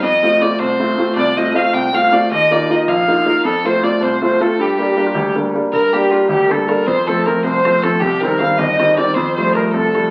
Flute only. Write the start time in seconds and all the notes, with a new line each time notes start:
1.16 D5
1.37 D#5
1.55 F5
1.73 G5
1.95 F5
2.31 D#5
2.70 D#5
2.89 F5
3.27 A#4
3.45 A4
3.65 C5
3.84 D5
4.02 C5
4.23 C5
4.41 A4
4.59 G4
4.83 G4 A4
5.06 F4
5.11 G4
5.73 A#4
5.94 G4
6.30 G4
6.52 A4
6.88 C5
7.08 A4
7.26 A#4
7.45 C5
7.84 A4
8.02 G4
8.23 A#4
8.40 F5
8.59 D#5
8.80 D#5
8.95 D#5
8.99 D5
9.17 C5
9.38 C5
9.55 A#4
9.74 A4